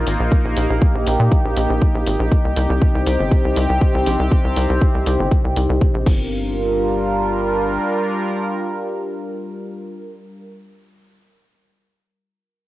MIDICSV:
0, 0, Header, 1, 4, 480
1, 0, Start_track
1, 0, Key_signature, -2, "minor"
1, 0, Tempo, 500000
1, 302, Time_signature, 4, 2, 24, 8
1, 12168, End_track
2, 0, Start_track
2, 0, Title_t, "Analog synth pad"
2, 0, Program_c, 0, 89
2, 0, Note_on_c, 0, 58, 87
2, 0, Note_on_c, 0, 63, 76
2, 0, Note_on_c, 0, 65, 89
2, 284, Note_off_c, 0, 65, 0
2, 306, Note_on_c, 0, 67, 92
2, 2185, Note_off_c, 0, 58, 0
2, 2205, Note_off_c, 0, 67, 0
2, 2221, Note_on_c, 0, 48, 82
2, 2221, Note_on_c, 0, 67, 90
2, 2222, Note_on_c, 0, 60, 76
2, 5785, Note_off_c, 0, 63, 0
2, 5786, Note_off_c, 0, 48, 0
2, 5786, Note_off_c, 0, 60, 0
2, 5786, Note_off_c, 0, 67, 0
2, 5825, Note_on_c, 0, 55, 84
2, 5825, Note_on_c, 0, 65, 76
2, 5825, Note_on_c, 0, 70, 90
2, 5826, Note_on_c, 0, 62, 74
2, 10021, Note_off_c, 0, 55, 0
2, 10021, Note_off_c, 0, 65, 0
2, 10021, Note_off_c, 0, 70, 0
2, 10022, Note_off_c, 0, 62, 0
2, 12168, End_track
3, 0, Start_track
3, 0, Title_t, "Analog synth bass"
3, 0, Program_c, 1, 38
3, 65, Note_on_c, 1, 32, 95
3, 163, Note_off_c, 1, 32, 0
3, 189, Note_on_c, 1, 34, 88
3, 281, Note_off_c, 1, 34, 0
3, 430, Note_on_c, 1, 34, 85
3, 522, Note_off_c, 1, 34, 0
3, 545, Note_on_c, 1, 34, 98
3, 644, Note_off_c, 1, 34, 0
3, 669, Note_on_c, 1, 34, 91
3, 761, Note_off_c, 1, 34, 0
3, 909, Note_on_c, 1, 34, 85
3, 1001, Note_off_c, 1, 34, 0
3, 1024, Note_on_c, 1, 34, 94
3, 1123, Note_off_c, 1, 34, 0
3, 1148, Note_on_c, 1, 46, 92
3, 1241, Note_off_c, 1, 46, 0
3, 1388, Note_on_c, 1, 34, 84
3, 1481, Note_off_c, 1, 34, 0
3, 1502, Note_on_c, 1, 34, 98
3, 1602, Note_off_c, 1, 34, 0
3, 1627, Note_on_c, 1, 34, 91
3, 1720, Note_off_c, 1, 34, 0
3, 1868, Note_on_c, 1, 34, 90
3, 1960, Note_off_c, 1, 34, 0
3, 1983, Note_on_c, 1, 32, 94
3, 2082, Note_off_c, 1, 32, 0
3, 2107, Note_on_c, 1, 34, 92
3, 2200, Note_off_c, 1, 34, 0
3, 2348, Note_on_c, 1, 36, 79
3, 2440, Note_off_c, 1, 36, 0
3, 2462, Note_on_c, 1, 36, 102
3, 2562, Note_off_c, 1, 36, 0
3, 2587, Note_on_c, 1, 36, 95
3, 2680, Note_off_c, 1, 36, 0
3, 2828, Note_on_c, 1, 36, 86
3, 2921, Note_off_c, 1, 36, 0
3, 2943, Note_on_c, 1, 36, 98
3, 3042, Note_off_c, 1, 36, 0
3, 3067, Note_on_c, 1, 31, 91
3, 3160, Note_off_c, 1, 31, 0
3, 3309, Note_on_c, 1, 36, 85
3, 3401, Note_off_c, 1, 36, 0
3, 3424, Note_on_c, 1, 36, 99
3, 3523, Note_off_c, 1, 36, 0
3, 3548, Note_on_c, 1, 36, 86
3, 3641, Note_off_c, 1, 36, 0
3, 3788, Note_on_c, 1, 36, 93
3, 3881, Note_off_c, 1, 36, 0
3, 3904, Note_on_c, 1, 34, 93
3, 4003, Note_off_c, 1, 34, 0
3, 4027, Note_on_c, 1, 36, 89
3, 4120, Note_off_c, 1, 36, 0
3, 4268, Note_on_c, 1, 36, 80
3, 4360, Note_off_c, 1, 36, 0
3, 4384, Note_on_c, 1, 36, 96
3, 4483, Note_off_c, 1, 36, 0
3, 4508, Note_on_c, 1, 36, 91
3, 4600, Note_off_c, 1, 36, 0
3, 4748, Note_on_c, 1, 36, 82
3, 4841, Note_off_c, 1, 36, 0
3, 4863, Note_on_c, 1, 36, 101
3, 4963, Note_off_c, 1, 36, 0
3, 4988, Note_on_c, 1, 31, 88
3, 5080, Note_off_c, 1, 31, 0
3, 5228, Note_on_c, 1, 36, 86
3, 5320, Note_off_c, 1, 36, 0
3, 5343, Note_on_c, 1, 36, 95
3, 5443, Note_off_c, 1, 36, 0
3, 5468, Note_on_c, 1, 36, 91
3, 5560, Note_off_c, 1, 36, 0
3, 5707, Note_on_c, 1, 34, 92
3, 5800, Note_off_c, 1, 34, 0
3, 5824, Note_on_c, 1, 31, 95
3, 7465, Note_off_c, 1, 31, 0
3, 12168, End_track
4, 0, Start_track
4, 0, Title_t, "Drums"
4, 63, Note_on_c, 9, 46, 100
4, 159, Note_off_c, 9, 46, 0
4, 304, Note_on_c, 9, 36, 109
4, 400, Note_off_c, 9, 36, 0
4, 543, Note_on_c, 9, 46, 97
4, 639, Note_off_c, 9, 46, 0
4, 784, Note_on_c, 9, 36, 121
4, 880, Note_off_c, 9, 36, 0
4, 1023, Note_on_c, 9, 46, 101
4, 1119, Note_off_c, 9, 46, 0
4, 1263, Note_on_c, 9, 36, 110
4, 1359, Note_off_c, 9, 36, 0
4, 1503, Note_on_c, 9, 46, 94
4, 1599, Note_off_c, 9, 46, 0
4, 1743, Note_on_c, 9, 36, 104
4, 1839, Note_off_c, 9, 36, 0
4, 1982, Note_on_c, 9, 46, 101
4, 2078, Note_off_c, 9, 46, 0
4, 2223, Note_on_c, 9, 36, 108
4, 2319, Note_off_c, 9, 36, 0
4, 2462, Note_on_c, 9, 46, 95
4, 2558, Note_off_c, 9, 46, 0
4, 2703, Note_on_c, 9, 36, 111
4, 2799, Note_off_c, 9, 36, 0
4, 2943, Note_on_c, 9, 46, 103
4, 3039, Note_off_c, 9, 46, 0
4, 3183, Note_on_c, 9, 36, 107
4, 3279, Note_off_c, 9, 36, 0
4, 3423, Note_on_c, 9, 46, 90
4, 3519, Note_off_c, 9, 46, 0
4, 3663, Note_on_c, 9, 36, 108
4, 3759, Note_off_c, 9, 36, 0
4, 3902, Note_on_c, 9, 46, 97
4, 3998, Note_off_c, 9, 46, 0
4, 4143, Note_on_c, 9, 36, 113
4, 4239, Note_off_c, 9, 36, 0
4, 4382, Note_on_c, 9, 46, 94
4, 4478, Note_off_c, 9, 46, 0
4, 4624, Note_on_c, 9, 36, 116
4, 4720, Note_off_c, 9, 36, 0
4, 4863, Note_on_c, 9, 46, 101
4, 4959, Note_off_c, 9, 46, 0
4, 5104, Note_on_c, 9, 36, 106
4, 5200, Note_off_c, 9, 36, 0
4, 5343, Note_on_c, 9, 46, 90
4, 5439, Note_off_c, 9, 46, 0
4, 5583, Note_on_c, 9, 36, 103
4, 5679, Note_off_c, 9, 36, 0
4, 5823, Note_on_c, 9, 36, 108
4, 5823, Note_on_c, 9, 49, 86
4, 5919, Note_off_c, 9, 36, 0
4, 5919, Note_off_c, 9, 49, 0
4, 12168, End_track
0, 0, End_of_file